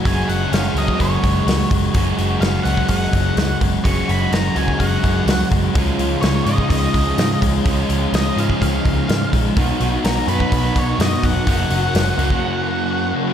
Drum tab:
HH |o-o-o-o-o-o-o-o-|o-o-o-o-o-o-o-o-|o-o-o-o-o-o-o-o-|o-o-o-o-o-o-o-o-|
SD |----o-------o---|----o-------o---|----o-------o---|----o-------o---|
BD |o------oo-o---o-|o------oo-o---o-|o------oo-o---o-|o------oo-o---o-|

HH |o-o-o-o-o-o-o-o-|o-o-o-o-o-o-o-o-|o-o-o-o---------|
SD |----o-------o---|----o-------o---|----o-----------|
BD |o------oo-o---o-|o------oo-o---o-|o------o--------|